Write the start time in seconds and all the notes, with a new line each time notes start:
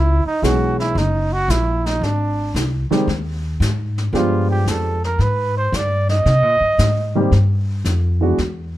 Already playing: C#2 E4
0.26 D#4, muted upright bass stroke
0.42 B1 E3 G#3 B3 C#4 F#4 G#4, snare, hi-hat pedal
0.80 E4, snare
0.95 F#1 D#4, brush sweep, snare
1.33 F#4
1.48 A#1 E4, snare, hi-hat pedal
1.86 D#4, snare
2.01 G#1 D4, brush sweep, snare
2.54 C2, snare, hi-hat pedal
2.90 D#3 G3 G#3 C4 G4, muted upright bass stroke, snare
3.07 D#2, brush sweep, snare
3.60 G#2, snare, hi-hat pedal
3.98 snare
4.13 G2 F3 G#3 B3 D4 F4 G4, brush sweep, snare
4.51 G4
4.66 F2 A4, snare, hi-hat pedal
5.04 A#4, snare
5.19 G#2 B4, brush sweep, snare
5.57 C5
5.72 G2, snare, hi-hat pedal
5.77 D5
6.09 D#5, snare
6.26 C3, brush sweep, snare
6.43 A#2
6.61 G2
6.78 G#2, snare, hi-hat pedal
7.15 D#3 G3 A#3 C4 G4
7.32 G2, brush sweep, snare
7.85 F2, snare, hi-hat pedal
8.21 E3 G#3 B3 D4 F#4
8.38 E2, brush sweep, snare